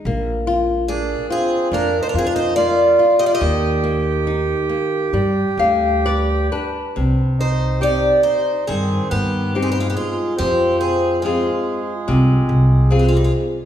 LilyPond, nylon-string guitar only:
\new Staff \with { instrumentName = "Nylon-string guitar" } { \time 4/4 \key g \phrygian \tempo 4 = 71 bes8 f'8 bes8 f'8 bes8 f'8 bes8 f'8 | ees8 bes8 ees'8 bes8 g8 <d f''>8 <b' d''>8 <d' b'>8 | \key c \minor c4 <c' ees' g'>4 ees4 <c' ees' g'>4 | f4 <c' f' aes'>4 c4 <c' f' aes'>4 | }